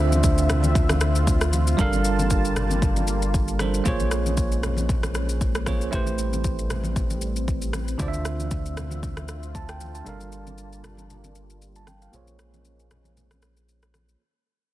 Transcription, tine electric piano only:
0, 0, Header, 1, 2, 480
1, 0, Start_track
1, 0, Tempo, 517241
1, 1659, Time_signature, 4, 2, 24, 8
1, 13672, End_track
2, 0, Start_track
2, 0, Title_t, "Tine electric piano"
2, 0, Program_c, 0, 4
2, 0, Control_c, 0, 64, 127
2, 0, Note_on_c, 0, 50, 78
2, 0, Note_on_c, 0, 62, 71
2, 0, Note_on_c, 0, 65, 71
2, 0, Note_on_c, 0, 72, 73
2, 0, Note_on_c, 0, 76, 84
2, 1613, Note_off_c, 0, 50, 0
2, 1618, Note_off_c, 0, 62, 0
2, 1623, Note_off_c, 0, 65, 0
2, 1628, Note_off_c, 0, 72, 0
2, 1643, Note_on_c, 0, 55, 77
2, 1652, Note_on_c, 0, 62, 72
2, 1662, Note_off_c, 0, 76, 0
2, 1662, Note_on_c, 0, 69, 73
2, 1670, Control_c, 0, 64, 0
2, 1672, Note_on_c, 0, 70, 71
2, 1682, Note_on_c, 0, 77, 90
2, 1844, Control_c, 0, 64, 127
2, 3297, Note_off_c, 0, 55, 0
2, 3302, Note_off_c, 0, 62, 0
2, 3307, Note_off_c, 0, 69, 0
2, 3312, Note_off_c, 0, 70, 0
2, 3317, Note_off_c, 0, 77, 0
2, 3333, Note_on_c, 0, 55, 59
2, 3338, Note_on_c, 0, 62, 55
2, 3343, Note_on_c, 0, 69, 55
2, 3348, Note_on_c, 0, 70, 54
2, 3352, Note_on_c, 0, 72, 66
2, 3563, Note_on_c, 0, 58, 78
2, 3573, Note_on_c, 0, 65, 71
2, 3576, Note_off_c, 0, 55, 0
2, 3578, Note_off_c, 0, 62, 0
2, 3581, Note_off_c, 0, 69, 0
2, 3581, Note_off_c, 0, 72, 0
2, 3583, Note_off_c, 0, 70, 0
2, 3583, Note_on_c, 0, 68, 70
2, 3591, Control_c, 0, 64, 0
2, 3592, Note_on_c, 0, 72, 69
2, 3601, Note_on_c, 0, 73, 89
2, 3757, Control_c, 0, 64, 127
2, 5217, Note_off_c, 0, 58, 0
2, 5222, Note_off_c, 0, 65, 0
2, 5227, Note_off_c, 0, 68, 0
2, 5232, Note_off_c, 0, 72, 0
2, 5237, Note_off_c, 0, 73, 0
2, 5253, Note_on_c, 0, 58, 60
2, 5258, Note_on_c, 0, 65, 51
2, 5262, Note_on_c, 0, 68, 54
2, 5267, Note_on_c, 0, 72, 53
2, 5272, Note_on_c, 0, 73, 64
2, 5484, Note_on_c, 0, 57, 78
2, 5493, Note_on_c, 0, 64, 73
2, 5496, Note_off_c, 0, 58, 0
2, 5498, Note_off_c, 0, 65, 0
2, 5500, Note_off_c, 0, 68, 0
2, 5503, Note_off_c, 0, 72, 0
2, 5504, Note_on_c, 0, 67, 69
2, 5506, Note_off_c, 0, 73, 0
2, 5509, Control_c, 0, 64, 0
2, 5513, Note_on_c, 0, 71, 67
2, 5522, Note_on_c, 0, 72, 88
2, 5688, Control_c, 0, 64, 127
2, 7374, Note_off_c, 0, 57, 0
2, 7379, Note_off_c, 0, 64, 0
2, 7384, Note_off_c, 0, 67, 0
2, 7389, Note_off_c, 0, 71, 0
2, 7393, Note_off_c, 0, 72, 0
2, 7404, Note_on_c, 0, 50, 75
2, 7414, Note_on_c, 0, 62, 71
2, 7423, Note_on_c, 0, 65, 71
2, 7431, Control_c, 0, 64, 0
2, 7433, Note_on_c, 0, 72, 68
2, 7443, Note_on_c, 0, 74, 70
2, 7494, Note_off_c, 0, 74, 0
2, 7500, Note_on_c, 0, 76, 87
2, 7602, Control_c, 0, 64, 127
2, 8864, Note_on_c, 0, 81, 68
2, 8987, Note_off_c, 0, 81, 0
2, 8994, Note_on_c, 0, 79, 72
2, 9220, Note_off_c, 0, 79, 0
2, 9234, Note_on_c, 0, 81, 61
2, 9294, Note_off_c, 0, 50, 0
2, 9299, Note_off_c, 0, 62, 0
2, 9304, Note_off_c, 0, 65, 0
2, 9309, Note_off_c, 0, 72, 0
2, 9322, Note_on_c, 0, 55, 79
2, 9332, Note_on_c, 0, 62, 73
2, 9342, Note_off_c, 0, 76, 0
2, 9342, Note_on_c, 0, 69, 70
2, 9349, Control_c, 0, 64, 0
2, 9351, Note_on_c, 0, 70, 73
2, 9361, Note_on_c, 0, 77, 84
2, 9461, Note_off_c, 0, 81, 0
2, 9491, Control_c, 0, 64, 127
2, 10761, Note_off_c, 0, 77, 0
2, 10914, Note_on_c, 0, 81, 68
2, 11015, Note_off_c, 0, 81, 0
2, 11022, Note_on_c, 0, 79, 73
2, 11146, Note_off_c, 0, 79, 0
2, 11155, Note_on_c, 0, 77, 62
2, 11213, Note_off_c, 0, 55, 0
2, 11218, Note_off_c, 0, 62, 0
2, 11223, Note_off_c, 0, 69, 0
2, 11228, Note_off_c, 0, 70, 0
2, 11244, Note_on_c, 0, 58, 78
2, 11253, Note_on_c, 0, 65, 70
2, 11263, Note_on_c, 0, 68, 70
2, 11270, Control_c, 0, 64, 0
2, 11273, Note_on_c, 0, 72, 68
2, 11283, Note_on_c, 0, 73, 84
2, 11381, Note_off_c, 0, 77, 0
2, 11456, Control_c, 0, 64, 127
2, 13134, Note_off_c, 0, 58, 0
2, 13139, Note_off_c, 0, 65, 0
2, 13144, Note_off_c, 0, 68, 0
2, 13149, Note_off_c, 0, 72, 0
2, 13154, Note_off_c, 0, 73, 0
2, 13190, Control_c, 0, 64, 0
2, 13672, End_track
0, 0, End_of_file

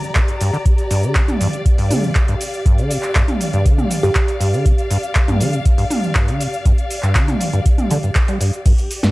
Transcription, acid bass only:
0, 0, Header, 1, 2, 480
1, 0, Start_track
1, 0, Key_signature, -2, "minor"
1, 0, Tempo, 500000
1, 631, Time_signature, 4, 2, 24, 8
1, 8748, End_track
2, 0, Start_track
2, 0, Title_t, "Acid bass"
2, 0, Program_c, 0, 38
2, 151, Note_on_c, 0, 46, 83
2, 190, Note_off_c, 0, 46, 0
2, 391, Note_on_c, 0, 43, 73
2, 490, Note_off_c, 0, 43, 0
2, 511, Note_on_c, 0, 50, 78
2, 550, Note_off_c, 0, 50, 0
2, 871, Note_on_c, 0, 43, 78
2, 992, Note_on_c, 0, 50, 77
2, 1006, Note_off_c, 0, 43, 0
2, 1110, Note_on_c, 0, 48, 79
2, 1125, Note_off_c, 0, 50, 0
2, 1177, Note_off_c, 0, 48, 0
2, 1351, Note_on_c, 0, 43, 79
2, 1417, Note_off_c, 0, 43, 0
2, 1711, Note_on_c, 0, 43, 74
2, 1831, Note_on_c, 0, 50, 76
2, 1846, Note_off_c, 0, 43, 0
2, 1953, Note_on_c, 0, 48, 78
2, 1968, Note_off_c, 0, 50, 0
2, 2018, Note_off_c, 0, 48, 0
2, 2192, Note_on_c, 0, 43, 80
2, 2257, Note_off_c, 0, 43, 0
2, 2551, Note_on_c, 0, 43, 82
2, 2673, Note_on_c, 0, 50, 76
2, 2687, Note_off_c, 0, 43, 0
2, 2792, Note_on_c, 0, 48, 76
2, 2806, Note_off_c, 0, 50, 0
2, 2858, Note_off_c, 0, 48, 0
2, 3032, Note_on_c, 0, 43, 85
2, 3097, Note_off_c, 0, 43, 0
2, 3392, Note_on_c, 0, 43, 75
2, 3510, Note_on_c, 0, 50, 87
2, 3525, Note_off_c, 0, 43, 0
2, 3630, Note_on_c, 0, 48, 77
2, 3645, Note_off_c, 0, 50, 0
2, 3696, Note_off_c, 0, 48, 0
2, 3870, Note_on_c, 0, 43, 76
2, 3936, Note_off_c, 0, 43, 0
2, 4228, Note_on_c, 0, 43, 75
2, 4349, Note_on_c, 0, 50, 79
2, 4363, Note_off_c, 0, 43, 0
2, 4469, Note_on_c, 0, 48, 80
2, 4484, Note_off_c, 0, 50, 0
2, 4536, Note_off_c, 0, 48, 0
2, 4709, Note_on_c, 0, 43, 78
2, 4776, Note_off_c, 0, 43, 0
2, 5071, Note_on_c, 0, 43, 76
2, 5190, Note_on_c, 0, 50, 83
2, 5204, Note_off_c, 0, 43, 0
2, 5311, Note_on_c, 0, 48, 74
2, 5326, Note_off_c, 0, 50, 0
2, 5377, Note_off_c, 0, 48, 0
2, 5551, Note_on_c, 0, 43, 78
2, 5616, Note_off_c, 0, 43, 0
2, 5910, Note_on_c, 0, 43, 83
2, 6033, Note_on_c, 0, 50, 81
2, 6047, Note_off_c, 0, 43, 0
2, 6151, Note_on_c, 0, 48, 74
2, 6165, Note_off_c, 0, 50, 0
2, 6217, Note_off_c, 0, 48, 0
2, 6391, Note_on_c, 0, 43, 80
2, 6457, Note_off_c, 0, 43, 0
2, 6752, Note_on_c, 0, 43, 80
2, 6871, Note_on_c, 0, 50, 84
2, 6885, Note_off_c, 0, 43, 0
2, 6992, Note_on_c, 0, 48, 75
2, 7007, Note_off_c, 0, 50, 0
2, 7057, Note_off_c, 0, 48, 0
2, 7232, Note_on_c, 0, 43, 78
2, 7297, Note_off_c, 0, 43, 0
2, 7591, Note_on_c, 0, 50, 99
2, 7657, Note_off_c, 0, 50, 0
2, 7713, Note_on_c, 0, 43, 76
2, 7777, Note_off_c, 0, 43, 0
2, 7952, Note_on_c, 0, 55, 83
2, 8050, Note_off_c, 0, 55, 0
2, 8071, Note_on_c, 0, 43, 71
2, 8170, Note_off_c, 0, 43, 0
2, 8312, Note_on_c, 0, 43, 84
2, 8378, Note_off_c, 0, 43, 0
2, 8672, Note_on_c, 0, 43, 82
2, 8748, Note_off_c, 0, 43, 0
2, 8748, End_track
0, 0, End_of_file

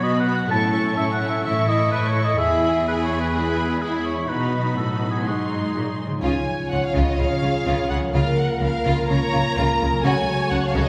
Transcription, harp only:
0, 0, Header, 1, 2, 480
1, 0, Start_track
1, 0, Key_signature, 4, "major"
1, 0, Tempo, 476948
1, 497, Time_signature, 4, 2, 24, 8
1, 6270, Key_signature, -5, "major"
1, 10956, End_track
2, 0, Start_track
2, 0, Title_t, "Harp"
2, 0, Program_c, 0, 46
2, 0, Note_on_c, 0, 47, 50
2, 0, Note_on_c, 0, 54, 37
2, 0, Note_on_c, 0, 59, 44
2, 0, Note_on_c, 0, 71, 32
2, 27, Note_on_c, 0, 66, 41
2, 249, Note_off_c, 0, 71, 0
2, 261, Note_on_c, 0, 71, 32
2, 495, Note_on_c, 0, 45, 46
2, 514, Note_off_c, 0, 47, 0
2, 517, Note_off_c, 0, 54, 0
2, 517, Note_off_c, 0, 59, 0
2, 517, Note_off_c, 0, 71, 0
2, 519, Note_off_c, 0, 66, 0
2, 736, Note_on_c, 0, 57, 41
2, 977, Note_on_c, 0, 73, 37
2, 1214, Note_on_c, 0, 64, 34
2, 1459, Note_on_c, 0, 52, 37
2, 1681, Note_off_c, 0, 57, 0
2, 1693, Note_on_c, 0, 57, 39
2, 1918, Note_off_c, 0, 73, 0
2, 1930, Note_on_c, 0, 73, 36
2, 2159, Note_off_c, 0, 64, 0
2, 2171, Note_on_c, 0, 64, 38
2, 2399, Note_off_c, 0, 52, 0
2, 2412, Note_on_c, 0, 52, 46
2, 2424, Note_off_c, 0, 45, 0
2, 2427, Note_off_c, 0, 73, 0
2, 2428, Note_off_c, 0, 57, 0
2, 2638, Note_off_c, 0, 64, 0
2, 2650, Note_on_c, 0, 64, 39
2, 2889, Note_on_c, 0, 68, 35
2, 3130, Note_on_c, 0, 71, 29
2, 3373, Note_on_c, 0, 56, 34
2, 3597, Note_off_c, 0, 64, 0
2, 3609, Note_on_c, 0, 64, 35
2, 3837, Note_off_c, 0, 68, 0
2, 3849, Note_on_c, 0, 68, 34
2, 4070, Note_off_c, 0, 71, 0
2, 4082, Note_on_c, 0, 71, 28
2, 4326, Note_on_c, 0, 47, 39
2, 4342, Note_off_c, 0, 52, 0
2, 4343, Note_off_c, 0, 64, 0
2, 4344, Note_off_c, 0, 56, 0
2, 4344, Note_off_c, 0, 68, 0
2, 4566, Note_on_c, 0, 54, 30
2, 4800, Note_off_c, 0, 71, 0
2, 4812, Note_on_c, 0, 71, 25
2, 5057, Note_on_c, 0, 63, 23
2, 5302, Note_on_c, 0, 44, 33
2, 5315, Note_off_c, 0, 47, 0
2, 5316, Note_off_c, 0, 71, 0
2, 5547, Note_on_c, 0, 56, 25
2, 5796, Note_on_c, 0, 72, 30
2, 6022, Note_off_c, 0, 63, 0
2, 6034, Note_on_c, 0, 63, 26
2, 6098, Note_on_c, 0, 49, 40
2, 6143, Note_on_c, 0, 53, 33
2, 6188, Note_on_c, 0, 61, 29
2, 6232, Note_on_c, 0, 73, 31
2, 6291, Note_off_c, 0, 54, 0
2, 6292, Note_off_c, 0, 63, 0
2, 6293, Note_off_c, 0, 44, 0
2, 6295, Note_off_c, 0, 72, 0
2, 7995, Note_off_c, 0, 49, 0
2, 8007, Note_on_c, 0, 49, 41
2, 8039, Note_off_c, 0, 53, 0
2, 8051, Note_on_c, 0, 53, 35
2, 8085, Note_off_c, 0, 61, 0
2, 8097, Note_on_c, 0, 61, 34
2, 8140, Note_on_c, 0, 70, 35
2, 8211, Note_off_c, 0, 56, 0
2, 9915, Note_off_c, 0, 49, 0
2, 9927, Note_on_c, 0, 49, 45
2, 9974, Note_on_c, 0, 54, 38
2, 10004, Note_off_c, 0, 61, 0
2, 10016, Note_on_c, 0, 61, 40
2, 10057, Note_off_c, 0, 53, 0
2, 10064, Note_on_c, 0, 69, 40
2, 10102, Note_off_c, 0, 70, 0
2, 10106, Note_off_c, 0, 73, 0
2, 10956, Note_off_c, 0, 49, 0
2, 10956, Note_off_c, 0, 54, 0
2, 10956, Note_off_c, 0, 61, 0
2, 10956, Note_off_c, 0, 69, 0
2, 10956, End_track
0, 0, End_of_file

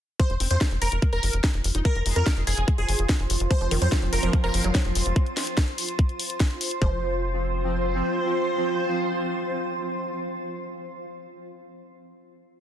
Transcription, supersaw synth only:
0, 0, Header, 1, 2, 480
1, 0, Start_track
1, 0, Tempo, 413793
1, 227, Time_signature, 4, 2, 24, 8
1, 14617, End_track
2, 0, Start_track
2, 0, Title_t, "Supersaw synth"
2, 0, Program_c, 0, 81
2, 228, Note_on_c, 0, 72, 99
2, 395, Note_off_c, 0, 72, 0
2, 587, Note_on_c, 0, 72, 92
2, 755, Note_off_c, 0, 72, 0
2, 947, Note_on_c, 0, 70, 96
2, 1115, Note_off_c, 0, 70, 0
2, 1307, Note_on_c, 0, 70, 96
2, 1531, Note_off_c, 0, 70, 0
2, 2147, Note_on_c, 0, 70, 102
2, 2315, Note_off_c, 0, 70, 0
2, 2507, Note_on_c, 0, 70, 95
2, 2675, Note_off_c, 0, 70, 0
2, 2868, Note_on_c, 0, 68, 96
2, 3035, Note_off_c, 0, 68, 0
2, 3228, Note_on_c, 0, 68, 98
2, 3452, Note_off_c, 0, 68, 0
2, 4068, Note_on_c, 0, 72, 101
2, 4236, Note_off_c, 0, 72, 0
2, 4427, Note_on_c, 0, 72, 97
2, 4595, Note_off_c, 0, 72, 0
2, 4787, Note_on_c, 0, 70, 95
2, 4955, Note_off_c, 0, 70, 0
2, 5147, Note_on_c, 0, 70, 96
2, 5371, Note_off_c, 0, 70, 0
2, 7907, Note_on_c, 0, 72, 110
2, 12313, Note_off_c, 0, 72, 0
2, 14617, End_track
0, 0, End_of_file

